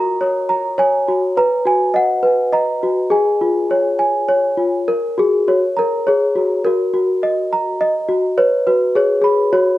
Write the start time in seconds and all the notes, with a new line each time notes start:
Already playing: F#4 A#4 A#5
0.21 C#5
0.49 A#5
0.78 C#5 G#5
1.08 F#4
1.37 B4 A#5
1.65 F#4 G#5
1.94 D#5 F#5
2.23 B4
2.52 D#5 A#5
2.83 F#4
3.10 G#4 G#5
3.41 F4
3.71 C#5
3.99 G#5
4.28 C#5
4.57 F4
4.88 A#4
5.18 F#4 G#4
5.48 F#4 C#5
5.77 A#4 A#5
6.07 G#4 C#5
6.36 F#4
6.65 F#4 A#4
6.94 F#4
7.23 D#5
7.53 A#5
7.81 D#5
8.09 F#4
8.38 B4 C#5
8.67 F#4 B4
8.95 G#4 C#5
9.22 G#4 B5
9.53 F#4 C#5